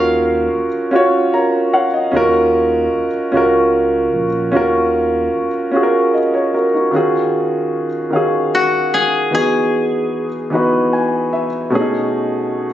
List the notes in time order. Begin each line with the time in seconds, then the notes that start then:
Already playing: D#2 C#4 F4 F#4 A#4 C#5 D#5 F5
0.54 D#2
0.91 C#4 F4 F#4
0.96 C#5
1.34 A#4 C#5 A#5
1.74 C#5 F5 F#5
1.94 D#5
2.12 D#2 C#4 F4 F#4
2.16 A#4
2.93 C#2
3.32 C#2 C#4 F4 F#4
3.37 A#4
4.14 A#1
4.52 D#2 C#4 F4 F#4
4.56 A#4
5.34 D#2
5.71 C#4 F4 F#4
5.76 G#4
5.83 A#4
6.14 D#5
6.34 A#4 C#5
6.54 F#4 A#4
6.74 D#4 F#4
6.91 D#3 C#4 F4 F#4
6.96 G#4
8.10 D#3 C#4 F5
8.15 F#4 G#4
8.55 F#4
8.94 G#4
9.31 E3 B3 D#4 F#4 G#4
9.36 G#4
10.50 E3 B3 D#4 F#4
10.55 B4
10.93 G#5
11.33 E5
11.70 B2 A3 C#4 D4
11.75 G#4
11.81 D#4